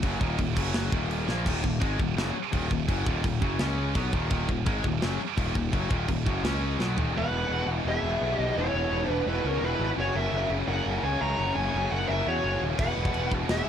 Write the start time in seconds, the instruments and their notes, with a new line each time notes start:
0.03 picked electric bass F#1, distorted electric guitar F#2 C#3 F#3, kick, crash
0.21 picked electric bass D#1, distorted electric guitar D#2 A#2 D#3, kick
0.38 picked electric bass D#1, distorted electric guitar D#2 A#2, kick, crash
0.56 picked electric bass F#1, distorted electric guitar F#2 C#3 F#3, kick, crash
0.74 snare, crash
0.92 picked electric bass D#1, distorted electric guitar D#2 A#2 D#3, kick
1.11 crash
1.28 picked electric bass A#1, distorted electric guitar A#2 F3 A#3, snare
1.45 picked electric bass D#1, distorted electric guitar D#2 A#2 D#3, kick, crash
1.63 picked electric bass D#1, distorted electric guitar D#2 A#2, kick
1.80 picked electric bass G#1, distorted electric guitar G#2 D#3 G#3, kick, crash
1.99 picked electric bass D#1, distorted electric guitar D#2 A#2, kick
2.16 picked electric bass F#1, distorted electric guitar F#2 C#3 F#3, snare, crash
2.34 muted picked electric bass stroke, muted distorted electric guitar stroke
2.52 picked electric bass D#1, distorted electric guitar D#2 A#2 D#3, kick, crash
2.70 picked electric bass D#1, distorted electric guitar D#2 A#2, kick
2.88 picked electric bass F#1, distorted electric guitar F#2 C#3 F#3, kick, crash
3.06 picked electric bass D#1, distorted electric guitar D#2 A#2 D#3, kick
3.24 picked electric bass D#1, distorted electric guitar D#2 A#2, kick, crash
3.42 picked electric bass F#1, distorted electric guitar F#2 C#3 F#3, kick
3.59 picked electric bass C#2, distorted electric guitar C#3 G#3 C#4, snare, crash
3.95 picked electric bass B1, distorted electric guitar B2 F#3 B3, kick, crash
4.12 picked electric bass D#1, distorted electric guitar D#2 A#2 D#3, kick
4.30 picked electric bass D#1, distorted electric guitar D#2 A#2 D#3, kick, crash
4.49 picked electric bass D#1, distorted electric guitar D#2 A#2, kick
4.66 picked electric bass G#1, distorted electric guitar G#2 D#3 G#3, kick, crash
4.84 picked electric bass D#1, distorted electric guitar D#2 A#2, kick
5.02 picked electric bass F#1, distorted electric guitar F#2 C#3 F#3, snare, crash
5.20 muted distorted electric guitar stroke, muted picked electric bass stroke
5.37 picked electric bass D#1, distorted electric guitar D#2 A#2 D#3, kick, crash
5.55 picked electric bass D#1, distorted electric guitar D#2 A#2, kick
5.73 picked electric bass F#1, distorted electric guitar F#2 C#3 F#3, kick, crash
5.91 picked electric bass D#1, distorted electric guitar D#2 A#2 D#3, kick
6.08 picked electric bass D#1, distorted electric guitar D#2 A#2, kick, crash
6.26 picked electric bass F#1, distorted electric guitar F#2 C#3 F#3, kick
6.44 picked electric bass C#2, distorted electric guitar C#3 G#3 C#4, snare, crash
6.79 picked electric bass B1, distorted electric guitar B2 F#3 B3, snare
6.97 picked electric bass D#1, distorted electric guitar D#2 A#2 D#3, floor tom
7.14 picked electric bass E1, distorted electric guitar E2 B2, lead electric guitar B4 F#5
7.22 distorted electric guitar E2 B2
7.30 picked electric bass E1, distorted electric guitar E2 B2
7.39 distorted electric guitar E2 B2
7.46 picked electric bass E1, distorted electric guitar E2 B2
7.53 distorted electric guitar E2 B2
7.61 distorted electric guitar E2 B2
7.66 picked electric bass E1, distorted electric guitar E2 B2
7.77 distorted electric guitar E2 B2
7.85 picked electric bass E1, distorted electric guitar E2 B2, lead electric guitar G#4 E5
7.92 distorted electric guitar E2 B2
8.01 picked electric bass E1, distorted electric guitar E2 B2
8.08 distorted electric guitar E2 B2
8.16 distorted electric guitar E2 B2
8.21 picked electric bass B1, distorted electric guitar E2 B2
8.31 distorted electric guitar E2 B2, lead electric guitar G4
8.38 picked electric bass B1, distorted electric guitar E2 B2, lead electric guitar D#5
8.46 distorted electric guitar E2 B2
8.56 picked electric bass E1, distorted electric guitar E2 B2, lead electric guitar E4 C#5
8.64 distorted electric guitar E2 B2
8.71 picked electric bass E1, distorted electric guitar E2 B2
8.79 distorted electric guitar E2 B2
8.88 picked electric bass E1, distorted electric guitar E2 B2
8.94 distorted electric guitar E2 B2
9.03 distorted electric guitar E2 B2
9.08 picked electric bass E1, distorted electric guitar E2 B2, lead electric guitar D4 B4
9.18 distorted electric guitar E2 B2
9.26 picked electric bass E1, distorted electric guitar E2 B2, lead electric guitar E4 B4
9.35 distorted electric guitar E2 B2
9.42 picked electric bass C#2, distorted electric guitar E2 B2, lead electric guitar A#4
9.47 distorted electric guitar E2 B2, lead electric guitar C#4
9.57 distorted electric guitar E2 B2
9.61 picked electric bass E1, distorted electric guitar E2, lead electric guitar E4 B4
9.66 distorted electric guitar B2
9.73 distorted electric guitar E2 B2
9.79 picked electric bass G#1, distorted electric guitar E2 B2
9.89 distorted electric guitar E2 B2
9.97 picked electric bass F#1, distorted electric guitar F#2 C#3, lead electric guitar F#4 C#5
10.04 distorted electric guitar F#2 C#3
10.13 picked electric bass F#1, distorted electric guitar F#2 C#3, lead electric guitar A#4 E5
10.21 distorted electric guitar F#2 C#3
10.27 distorted electric guitar F#2 C#3
10.32 picked electric bass F#1, distorted electric guitar F#2
10.37 distorted electric guitar C#3
10.43 distorted electric guitar F#2 C#3
10.50 picked electric bass F#1, distorted electric guitar F#2 C#3
10.59 distorted electric guitar F#2 C#3
10.66 picked electric bass F#1, distorted electric guitar F#2 C#3, lead electric guitar A#4 F#5
10.73 distorted electric guitar F#2 C#3
10.82 picked electric bass F#1, distorted electric guitar F#2 C#3
10.90 distorted electric guitar F#2 C#3
10.97 distorted electric guitar F#2 C#3
11.03 picked electric bass C#2, distorted electric guitar F#2 C#3, lead electric guitar C#5 G#5
11.13 distorted electric guitar F#2 C#3
11.20 picked electric bass C#2, distorted electric guitar F#2 C#3, lead electric guitar C#5 A#5
11.29 distorted electric guitar F#2 C#3
11.38 picked electric bass F#1, distorted electric guitar F#2 C#3
11.46 distorted electric guitar F#2 C#3
11.53 picked electric bass F#1, distorted electric guitar F#2 C#3, lead electric guitar C#5 G#5
11.61 distorted electric guitar F#2 C#3
11.69 distorted electric guitar F#2 C#3
11.74 picked electric bass F#1, distorted electric guitar F#2 C#3
11.85 distorted electric guitar F#2 C#3
11.91 picked electric bass F#1, distorted electric guitar F#2 C#3, lead electric guitar A#4 F#5
12.00 distorted electric guitar F#2 C#3
12.07 picked electric bass F#1, distorted electric guitar F#2 C#3, lead electric guitar A#4 E5
12.16 distorted electric guitar F#2 C#3
12.24 picked electric bass E2, distorted electric guitar F#2 C#3
12.28 distorted electric guitar F#2, lead electric guitar F#4 C#5
12.32 distorted electric guitar C#3
12.40 picked electric bass F#1, distorted electric guitar F#2 C#3
12.47 distorted electric guitar F#2 C#3
12.54 distorted electric guitar F#2 C#3
12.61 picked electric bass D#1, distorted electric guitar F#2 C#3
12.71 distorted electric guitar F#2 C#3
12.79 picked electric bass E1, distorted electric guitar E2 B2, lead electric guitar B4 F#5, kick, crash
12.87 distorted electric guitar E2 B2
12.95 picked electric bass E1, distorted electric guitar E2 B2
13.02 distorted electric guitar E2 B2, kick
13.10 distorted electric guitar E2 B2
13.14 picked electric bass E1, distorted electric guitar E2, crash
13.19 distorted electric guitar B2
13.26 distorted electric guitar E2 B2
13.31 picked electric bass E1, distorted electric guitar E2 B2, kick
13.41 distorted electric guitar E2 B2
13.49 picked electric bass E1, distorted electric guitar E2 B2, lead electric guitar G#4 E5, snare, crash
13.57 distorted electric guitar E2 B2
13.64 distorted electric guitar E2 B2